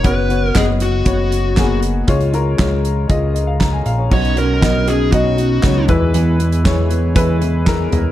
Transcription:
0.03 F#1 B3 F#4 B4 C#5, kick, closed hi-hat
0.28 B3 F#4 C#5, closed hi-hat
0.44 A#4
0.54 F#1 B3 F#4 G#4 D#5, kick, snare, clap, closed hi-hat
0.80 F#4, closed hi-hat
1.05 F#1 B3 F#4 C#5, kick, closed hi-hat
1.32 closed hi-hat
1.56 A#3 F#4 G#4, kick, snare, clap, closed hi-hat
1.63 B3
1.82 closed hi-hat
2.07 C#2 C#3 G#3 F4 C#5, kick, closed hi-hat
2.20 closed hi-hat
2.32 G#3 F4 A#4, closed hi-hat
2.57 C#2 G#3 F4 C#5, kick, snare, clap, closed hi-hat
2.85 closed hi-hat
3.08 C#2 G#3 F4 D#5, kick, closed hi-hat
3.34 D#5, closed hi-hat
3.47 F5
3.60 A#5, kick, snare, clap, closed hi-hat
3.73 G#5
3.86 A#1 F5, closed hi-hat
3.99 C#5
4.10 B1 B2 F#3 B3 C#4 D#4 F#4 C#5, kick, crash
4.25 closed hi-hat
4.36 C#4 D#4 F#4 A#4, closed hi-hat
4.61 F#3 B3 C#4 D#4 F#4 D#5, kick, snare, clap, closed hi-hat
4.86 C#4 D#4 F#4 G#4, closed hi-hat
5.12 B2 F#3 B3 C#4 D#4 F#4 D#5, kick, closed hi-hat
5.37 C#4 D#4 F#4, closed hi-hat
5.62 C#2 F#3 B3 C#4 D#4 F#4 C#5, kick, snare, clap, closed hi-hat
5.88 E2 E3 G#3 B3 E4 G#4 B4, kick, closed hi-hat, floor tom
6.13 E2 E3 B3 E4 G#4, closed hi-hat
6.39 B3 E4 G#4, closed hi-hat
6.52 closed hi-hat
6.64 E3 G#3 B3 E4 G#4 C#5, kick, snare, clap, closed hi-hat
6.89 B3 E4 G#4, closed hi-hat
7.15 E3 G#3 B3 E4 G#4 B4, kick, closed hi-hat
7.41 B3 E4 G#4, closed hi-hat
7.65 E3 G#3 B3 E4 G#4 A#4, kick, snare, clap, closed hi-hat
7.91 E2 B3 E4 G#4, closed hi-hat, floor tom

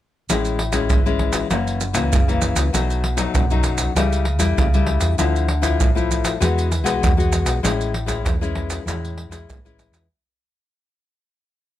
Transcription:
0.29 A1 A2 G#3 C#4 E4, pandeiro, maracas, surdo
0.45 pandeiro, maracas
0.59 pandeiro
0.72 G#3 C#4 E4, pandeiro, maracas, surdo
0.89 G#1 E3, pandeiro, maracas, surdo
1.06 G#3 C#4 E4, pandeiro, maracas
1.19 pandeiro, surdo
1.33 pandeiro, maracas, surdo
1.51 F#1 F#2 E3 A#3 C#4, pandeiro, maracas, surdo
1.67 pandeiro, maracas
1.81 pandeiro, maracas
1.93 C#2 E3 A#3 C#4, pandeiro, maracas, surdo
2.12 F#1 C#3, pandeiro, maracas, surdo
2.28 E3 A#3 C#4, pandeiro, maracas
2.42 pandeiro, maracas
2.55 C#2, pandeiro, maracas
2.73 B1 B2 F#3 A3 D#4, pandeiro, maracas, surdo
2.90 pandeiro, maracas
3.04 pandeiro
3.17 F#3 A3 D#4, pandeiro, maracas, surdo
3.34 B1 F#2, pandeiro, maracas, surdo
3.51 F#3 A3 D#4, pandeiro, maracas
3.64 pandeiro, maracas, surdo
3.78 pandeiro, maracas, surdo
3.95 C#2 C#3 G3 A3 E4, pandeiro, maracas, surdo
4.13 pandeiro, maracas
4.25 pandeiro
4.39 E2 G3 A3 E4, pandeiro, maracas, surdo
4.57 C#2 C#3, pandeiro, maracas, surdo
4.74 G3 A3 E4, pandeiro, maracas
4.87 pandeiro
5.01 E2, pandeiro, maracas
5.18 D2 D3 F3 A3 E4, pandeiro, maracas, surdo
5.36 pandeiro, maracas
5.48 pandeiro
5.62 F3 A3 E4, pandeiro, maracas, surdo
5.79 A1 A2, pandeiro, maracas, surdo
5.95 F3 A3 E4, pandeiro, maracas
6.11 pandeiro, maracas, surdo
6.25 pandeiro, maracas, surdo
6.40 E2 E3 G#3 B3 F#4, pandeiro, maracas, surdo
6.58 pandeiro, maracas
6.72 pandeiro, maracas
6.84 B1 G#3 B3 F#4, pandeiro, maracas, surdo
7.01 E2 B2, pandeiro, maracas, surdo
7.17 G#3 B3 F#4, pandeiro, maracas, surdo
7.32 pandeiro, maracas
7.45 B1, pandeiro, maracas
7.63 A1 A2 G#3 C#4 E4, pandeiro, maracas, surdo
7.81 pandeiro, maracas
7.94 pandeiro
8.06 G#3 C#4 E4, pandeiro, maracas, surdo
8.25 E2 E3, pandeiro, maracas, surdo
8.41 G#3 C#4 E4, pandeiro, maracas
8.55 pandeiro, surdo
8.70 pandeiro, maracas, surdo
8.86 E2 A2 G#3 C#4 E4, pandeiro, maracas, surdo
9.05 pandeiro, maracas
9.18 pandeiro
9.29 E2 G#3 C#4 E4, pandeiro, maracas, surdo
9.49 E3, pandeiro, maracas, surdo
9.65 G#3 C#4 E4, pandeiro, maracas
9.79 pandeiro, maracas
9.91 E2, pandeiro, maracas

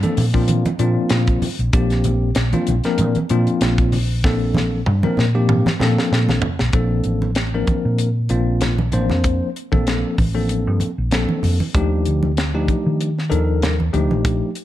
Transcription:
0.03 F3 A#3 C4 D4 A4, muted fingered electric bass stroke, closed hi-hat, high conga
0.17 A#2, open hi-hat, low conga
0.34 F3 A#3 C4 D4 F4, kick
0.48 closed hi-hat, high conga
0.65 muted fingered electric bass stroke, closed hi-hat, high conga
0.79 A#2 F3 A#3 C4 D4 F4, closed hi-hat
1.09 A#2, snare, closed hi-hat
1.27 A#1, kick, closed hi-hat
1.42 muted fingered electric bass stroke, open hi-hat, low conga
1.59 A#1, closed hi-hat
1.73 A#1 F3 A#3 C4 D4 G4, kick, closed hi-hat
1.90 snare, closed hi-hat
2.04 closed hi-hat, low conga
2.35 A#1, snare, closed hi-hat
2.53 F3 A#3 C4 D4 F4, closed hi-hat, high conga
2.67 A#1, closed hi-hat, low conga
2.84 F3 A#3 C4 D4 A#4, snare, closed hi-hat
2.98 A#2, closed hi-hat, high conga
3.15 closed hi-hat, high conga
3.29 A#2 F3 A#3 C4 D4 F4, closed hi-hat
3.47 closed hi-hat
3.61 A#1, snare, closed hi-hat
3.78 kick, closed hi-hat
3.92 open hi-hat, low conga
4.24 F3 A#3 C4 D4 A4, kick, snare
4.55 snare, high conga, low conga
4.86 G2, mid tom
5.03 F3 A#3 C4 D4 A#4, muted fingered electric bass stroke, high conga
5.17 A#2, snare, low conga
5.35 F3 A#3 C4 D4 G4
5.49 mid tom, high conga
5.66 muted fingered electric bass stroke, snare, high conga
5.80 A#2 F3 A#3 C4 D4 A4, snare, low conga
5.98 snare
6.12 A#2, snare
6.29 A#1, snare, high conga
6.42 floor tom, low conga
6.59 A#1, snare
6.73 A#1 F3 A#3 C4 D4 A4, kick, closed hi-hat
7.04 A1, closed hi-hat
7.22 high conga
7.35 snare, closed hi-hat
7.54 F3 A#3 C4 D4 A#4
7.67 kick, closed hi-hat, high conga, low conga
7.85 A#2
7.98 closed hi-hat
8.29 A#1 F3 A#3 C4 D4 F4, closed hi-hat, low conga
8.61 snare, closed hi-hat, low conga
8.79 high conga
8.92 A1 F3 A#3 C4 D4 C5, closed hi-hat, low conga
9.10 F2, snare, high conga
9.24 kick, closed hi-hat
9.56 closed hi-hat
9.72 A#1 F3 A#3 C4 D4 A4, kick, high conga
9.87 snare, closed hi-hat
10.18 A1, kick, open hi-hat, high conga, low conga
10.35 F3 A#3 C4 D4 A4
10.49 closed hi-hat
10.67 G2
10.80 closed hi-hat, low conga
10.98 A#1
11.11 F3 A#3 C4 D4 A4, snare, closed hi-hat, low conga
11.29 high conga
11.43 F2, open hi-hat, low conga
11.60 muted fingered electric bass stroke, high conga
11.75 D#2 F3 A3 D4 D#4 G4, kick, closed hi-hat
12.05 D2, closed hi-hat
12.23 high conga
12.37 snare, closed hi-hat
12.54 F3 A3 D4 D#4 G4
12.68 kick, closed hi-hat, high conga, low conga
12.86 D#3
13.01 closed hi-hat
13.18 snare
13.30 D#2 F3 D4 D#4 A4 A#4, closed hi-hat, low conga
13.62 snare, closed hi-hat, low conga
13.80 high conga
13.93 D2 F3 A3 D4 D#4 G4, closed hi-hat, low conga
14.10 A#1, high conga
14.25 kick, closed hi-hat
14.55 closed hi-hat

